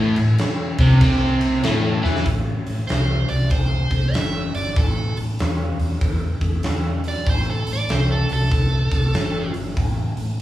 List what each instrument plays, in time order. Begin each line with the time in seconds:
Already playing: fingered electric bass A1, overdriven electric guitar A2 A3
0.16 fingered electric bass A1, overdriven electric guitar A2, crash
0.38 snare, crash
0.78 fingered electric bass C2, overdriven electric guitar C3 C4, kick, crash
1.01 fingered electric bass C2, overdriven electric guitar C3 C4, kick, crash
1.41 crash
1.63 fingered electric bass A1, overdriven electric guitar A2 A3, snare, crash
2.03 fingered electric bass E2, overdriven electric guitar E3 E4, snare
2.16 snare
2.26 fingered electric bass A1, kick, open hi-hat
2.66 fingered electric bass A1, open hi-hat
2.87 fingered electric bass C2, lead electric guitar C5, snare, open hi-hat
3.29 fingered electric bass C2, lead electric guitar D5, open hi-hat
3.50 fingered electric bass C2, lead electric guitar C5, kick, open hi-hat
3.91 fingered electric bass C2, kick, open hi-hat
4.13 fingered electric bass G1, lead electric guitar E5, snare, open hi-hat
4.54 fingered electric bass G1, lead electric guitar D5, open hi-hat
4.76 fingered electric bass A1, lead electric guitar A4, kick, open hi-hat
5.17 fingered electric bass A1, open hi-hat
5.39 fingered electric bass E2, snare, open hi-hat
5.79 fingered electric bass E2, open hi-hat
6.01 fingered electric bass E2, kick, open hi-hat
6.41 fingered electric bass E2, kick, open hi-hat
6.63 fingered electric bass E2, snare, open hi-hat
7.04 open hi-hat
7.08 lead electric guitar D5
7.27 fingered electric bass A1, lead electric guitar C5, kick, open hi-hat
7.51 lead electric guitar A4
7.67 fingered electric bass A1, open hi-hat
7.73 lead electric guitar D5
7.89 fingered electric bass C2, lead electric guitar C5, snare, open hi-hat
8.12 lead electric guitar A4
8.29 fingered electric bass C2, lead electric guitar A4, open hi-hat
8.51 fingered electric bass C2, kick, open hi-hat
8.91 fingered electric bass C2, kick, open hi-hat
9.14 fingered electric bass G1, snare, open hi-hat
9.54 fingered electric bass G1, open hi-hat
9.77 fingered electric bass A1, kick, open hi-hat
10.17 fingered electric bass A1, open hi-hat